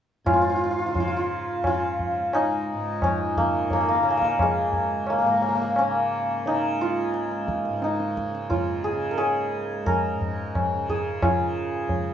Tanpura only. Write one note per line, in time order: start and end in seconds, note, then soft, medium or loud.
0.24 2.73 G#2 medium
0.87 1.48 C#3 medium
1.48 3.37 C#3 soft
2.11 4.62 C#2 medium
2.73 5.23 G#2 medium
3.37 3.99 C#3 medium
3.99 5.84 C#3 medium
4.62 7.06 C#2 medium
5.23 7.68 G#2 medium
5.84 6.46 C#3 medium
6.46 8.29 C#3 medium
7.06 9.51 C#2 medium
7.68 10.13 G#2 medium
8.29 8.91 C#3 soft
8.91 10.74 C#3 medium
9.51 11.92 C#2 medium
10.14 12.14 G#2 medium
10.74 11.34 C#3 medium
11.34 12.14 C#3 soft
11.93 12.14 C#2 medium